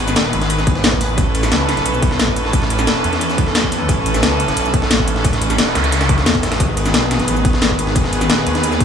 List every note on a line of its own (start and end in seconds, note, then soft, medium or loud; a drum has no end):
0.00 0.15 G#1 loud
0.00 1.14 D#3 medium
0.00 1.14 B3 medium
0.00 1.14 G#4 medium
0.00 6.56 B4 medium
0.08 snare soft
0.08 closed hi-hat soft
0.08 shaker medium
0.16 0.32 D#1 loud
0.16 snare loud
0.16 closed hi-hat medium
0.16 ride medium
0.16 shaker soft
0.25 snare soft
0.33 0.83 G#1 loud
0.33 closed hi-hat medium
0.33 ride medium
0.42 snare medium
0.42 closed hi-hat soft
0.50 closed hi-hat medium
0.50 ride medium
0.50 shaker medium
0.58 snare soft
0.58 shaker soft
0.67 kick loud
0.67 closed hi-hat medium
0.67 ride medium
0.75 snare soft
0.84 1.16 A1 loud
0.84 snare loud
0.84 closed hi-hat medium
0.84 ride medium
0.84 shaker soft
0.92 kick medium
1.01 closed hi-hat medium
1.01 open hi-hat medium
1.01 shaker soft
1.18 1.50 A1 loud
1.18 6.56 E3 medium
1.18 6.56 C#4 medium
1.18 6.56 A4 medium
1.18 kick loud
1.18 closed hi-hat medium
1.18 ride medium
1.18 shaker soft
1.35 closed hi-hat medium
1.35 ride medium
1.35 shaker soft
1.43 snare soft
1.43 closed hi-hat soft
1.43 shaker medium
1.52 1.84 C#2 loud
1.52 snare loud
1.52 closed hi-hat medium
1.52 ride medium
1.52 shaker soft
1.69 snare medium
1.69 snare soft
1.69 closed hi-hat medium
1.69 ride medium
1.77 snare soft
1.77 closed hi-hat soft
1.86 2.18 B1 loud
1.86 closed hi-hat medium
1.86 ride medium
1.86 shaker medium
1.94 shaker soft
2.02 kick loud
2.02 closed hi-hat medium
2.02 ride medium
2.11 snare medium
2.19 2.52 A1 loud
2.19 snare loud
2.19 closed hi-hat medium
2.19 ride medium
2.19 shaker medium
2.28 kick medium
2.36 closed hi-hat medium
2.36 ride medium
2.36 shaker soft
2.45 snare soft
2.53 2.86 A1 loud
2.53 kick loud
2.53 closed hi-hat medium
2.53 ride medium
2.53 shaker medium
2.62 snare medium
2.70 closed hi-hat medium
2.70 ride medium
2.70 shaker soft
2.79 snare soft
2.79 closed hi-hat soft
2.79 shaker medium
2.87 snare loud
2.87 closed hi-hat medium
2.87 ride medium
2.87 shaker medium
2.96 snare soft
3.04 3.54 E2 loud
3.04 closed hi-hat medium
3.04 ride medium
3.13 snare medium
3.13 closed hi-hat soft
3.21 closed hi-hat medium
3.21 ride medium
3.21 shaker medium
3.30 snare soft
3.30 shaker soft
3.38 kick loud
3.38 closed hi-hat medium
3.38 ride medium
3.47 snare soft
3.55 3.88 E2 loud
3.55 snare loud
3.55 closed hi-hat medium
3.55 ride medium
3.55 shaker medium
3.64 kick medium
3.72 closed hi-hat medium
3.72 open hi-hat medium
3.72 shaker soft
3.89 4.22 A1 loud
3.89 kick loud
3.89 closed hi-hat loud
3.89 ride medium
3.89 shaker medium
4.06 closed hi-hat medium
4.06 ride medium
4.06 shaker soft
4.14 snare soft
4.14 closed hi-hat soft
4.14 shaker medium
4.23 4.55 C#2 loud
4.23 snare loud
4.23 closed hi-hat loud
4.23 ride medium
4.23 shaker medium
4.40 closed hi-hat medium
4.40 ride medium
4.48 snare medium
4.48 closed hi-hat soft
4.57 4.89 B1 loud
4.57 closed hi-hat loud
4.57 ride medium
4.57 shaker medium
4.65 shaker soft
4.74 kick loud
4.74 closed hi-hat medium
4.74 ride medium
4.82 snare medium
4.91 5.23 A1 loud
4.91 snare loud
4.91 closed hi-hat medium
4.91 ride medium
4.91 shaker medium
4.99 kick medium
5.08 closed hi-hat medium
5.08 ride medium
5.08 shaker soft
5.16 snare soft
5.25 5.57 A1 loud
5.25 kick loud
5.25 closed hi-hat loud
5.25 ride medium
5.25 noise sweep medium
5.25 shaker medium
5.33 snare medium
5.33 closed hi-hat soft
5.41 closed hi-hat medium
5.41 ride medium
5.41 shaker soft
5.50 snare soft
5.50 closed hi-hat soft
5.50 shaker medium
5.58 5.74 E1 medium
5.58 snare loud
5.58 closed hi-hat loud
5.58 ride medium
5.58 shaker medium
5.67 snare soft
5.75 6.25 C#2 loud
5.75 snare loud
5.75 snare soft
5.75 closed hi-hat medium
5.75 ride medium
5.84 closed hi-hat soft
5.84 shaker soft
5.92 snare medium
5.92 closed hi-hat loud
5.92 ride medium
5.92 shaker medium
6.01 snare loud
6.01 ride medium
6.01 shaker soft
6.09 kick loud
6.09 closed hi-hat medium
6.18 snare medium
6.18 ride medium
6.26 6.42 E2 loud
6.26 snare loud
6.26 closed hi-hat loud
6.26 ride medium
6.26 shaker medium
6.35 kick medium
6.35 ride medium
6.43 6.59 A1 loud
6.43 snare loud
6.43 closed hi-hat medium
6.43 ride medium
6.43 shaker soft
6.52 snare loud
6.52 closed hi-hat soft
6.52 ride medium
6.60 6.93 G#1 loud
6.60 8.85 D#3 medium
6.60 8.85 B3 medium
6.60 8.85 G#4 medium
6.60 8.85 B4 medium
6.60 kick loud
6.60 closed hi-hat loud
6.60 ride medium
6.60 shaker soft
6.77 closed hi-hat medium
6.77 ride medium
6.77 shaker soft
6.86 snare soft
6.86 closed hi-hat soft
6.86 shaker medium
6.94 7.27 B1 loud
6.94 snare loud
6.94 closed hi-hat loud
6.94 ride medium
6.94 shaker soft
7.11 snare medium
7.11 snare soft
7.11 closed hi-hat medium
7.11 ride medium
7.19 snare soft
7.19 closed hi-hat soft
7.28 7.60 A1 loud
7.28 closed hi-hat loud
7.28 ride medium
7.28 shaker medium
7.36 shaker soft
7.45 kick loud
7.45 closed hi-hat medium
7.45 ride medium
7.53 snare medium
7.62 7.94 G#1 loud
7.62 snare loud
7.62 closed hi-hat loud
7.62 ride medium
7.62 shaker medium
7.70 kick medium
7.79 closed hi-hat medium
7.79 ride medium
7.79 shaker soft
7.87 snare soft
7.96 kick loud
7.96 closed hi-hat medium
7.96 ride medium
7.96 shaker soft
8.04 snare medium
8.13 closed hi-hat medium
8.13 ride medium
8.13 shaker soft
8.21 snare soft
8.21 closed hi-hat soft
8.21 shaker medium
8.30 8.45 D#1 loud
8.30 snare loud
8.30 closed hi-hat medium
8.30 ride medium
8.30 shaker soft
8.38 snare soft
8.47 8.85 D#2 loud
8.47 closed hi-hat medium
8.47 ride medium
8.55 snare medium
8.55 closed hi-hat soft
8.63 closed hi-hat loud
8.63 ride medium
8.63 shaker medium
8.72 snare soft
8.72 shaker soft
8.80 kick loud
8.80 closed hi-hat medium
8.80 ride medium